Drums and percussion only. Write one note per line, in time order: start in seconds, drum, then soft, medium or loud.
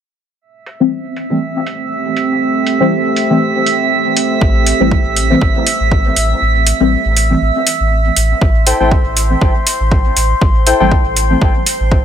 0.66 open hi-hat medium
1.16 open hi-hat medium
1.67 open hi-hat medium
2.17 open hi-hat medium
2.67 open hi-hat medium
3.16 open hi-hat medium
3.66 open hi-hat medium
4.17 open hi-hat medium
4.41 kick loud
4.67 open hi-hat medium
4.91 kick loud
5.17 open hi-hat medium
5.41 kick loud
5.67 open hi-hat medium
5.91 kick medium
6.16 open hi-hat medium
6.67 open hi-hat medium
7.17 open hi-hat medium
7.67 open hi-hat medium
8.16 open hi-hat medium
8.41 kick loud
8.67 open hi-hat medium
8.91 kick loud
9.17 open hi-hat medium
9.41 kick loud
9.67 open hi-hat medium
9.91 kick loud
10.17 open hi-hat medium
10.41 kick loud
10.67 open hi-hat medium
10.92 kick loud
11.17 open hi-hat medium
11.42 kick loud
11.66 open hi-hat medium
11.92 kick loud